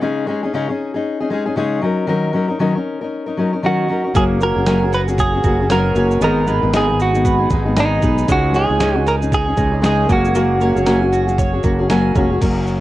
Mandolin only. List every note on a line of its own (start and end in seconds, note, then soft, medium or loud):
4.15 6.22 A#3 medium
4.41 5.17 C#5 medium
4.67 5.70 G#5 medium
4.92 5.43 F#4 medium
5.18 5.95 C#5 medium
5.44 6.28 F#4 medium
5.70 6.73 G#5 medium
5.96 6.28 C#5 medium
6.22 8.28 B3 medium
6.48 7.24 B4 medium
6.74 7.76 G#5 medium
7.00 7.51 D#4 medium
7.25 8.01 B4 medium
7.51 8.35 D#4 medium
7.77 8.80 G#5 medium
8.03 8.34 B4 medium
8.29 10.09 G#3 medium
8.54 9.31 C#5 medium
8.80 9.83 G#5 medium
9.06 9.56 D#4 medium
9.32 10.61 C#5 medium
9.58 10.15 D#4 medium
9.84 10.38 G#5 medium
10.10 10.35 A#3 medium
10.35 12.80 A#3 medium
10.61 11.38 C#5 medium
10.87 11.90 G#5 medium
11.13 11.64 F#4 medium
11.38 12.16 C#5 medium
11.64 12.80 F#4 medium
11.90 12.80 G#5 medium
12.16 12.80 C#5 medium